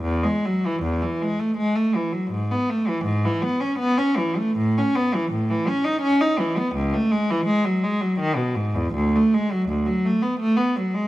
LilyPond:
\new Staff \with { instrumentName = "Cello" } { \clef bass \time 3/4 \key e \major \tempo 4 = 82 e,16 gis16 fis16 e16 e,16 e16 gis16 a16 gis16 a16 e16 fis16 | gis,16 b16 a16 e16 gis,16 e16 b16 cis'16 b16 cis'16 e16 a16 | a,16 cis'16 b16 e16 a,16 e16 cis'16 dis'16 cis'16 dis'16 e16 b16 | cis,16 a16 gis16 e16 gis16 fis16 gis16 fis16 dis16 b,16 gis,16 e,16 |
\key d \lydian d,16 a16 gis16 fis16 d,16 fis16 a16 b16 a16 b16 fis16 gis16 | }